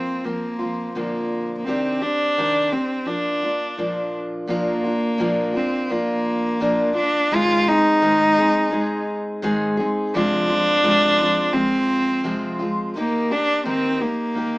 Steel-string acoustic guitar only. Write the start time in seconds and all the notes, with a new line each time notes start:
Already playing: F3 A#3 C4 F4
0.24 F3 A#3 C4 F4
0.59 F3 A#3 C4 F4
0.95 A#2 D3 F3 A#3 C4 F4
1.66 C3 D#3 C4 D4 G4
2.02 C4 D4 G4
2.37 C3 D#3 C4 D4 G4
2.72 C4 D4 G4
3.05 F3 A#3 D4 F4
3.43 A#3 D4 F4
3.77 A#2 F3 A#3 D4 F4
4.48 A#2 F3 A#3 D4 F4
4.84 A#3 D4 F4
5.18 A#2 F3 A#3 D4 F4
5.54 A#3 D4 F4
5.89 F3 A#3 D4 F4
6.60 A#2 F3 A#3 D4 F4
6.95 A#3 D4 F4
7.31 G#2 D#3 G#3 C4 D#4 G#4
7.67 G#3 C4 D#4 G#4
8.02 G#2 D#3 G#3 C4 D#4 G#4
8.38 G#3 C4 D#4 G#4
8.71 G#3 C4 D#4 G#4
9.42 G#2 D#3 G#3 C4 D#4 G#4
9.77 G#3 C4 D#4 G#4
10.14 F2 C3 F3 G#3 C4 F4
10.49 F3 G#3 C4 F4
10.83 F2 C3 F3 G#3 C4 F4
11.20 F3 G#3 C4 F4
11.53 F3 G#3 C4 F4
12.24 F2 C3 F3 G#3 C4 F4
12.59 F3 G#3 C4 F4
12.96 D#3 A#3 D#4 G4
13.31 A#3 G4
13.65 D#3 A#3 D#4 G4
14.00 A#3 D#4 G4
14.34 D#3 A#3 D#4 G4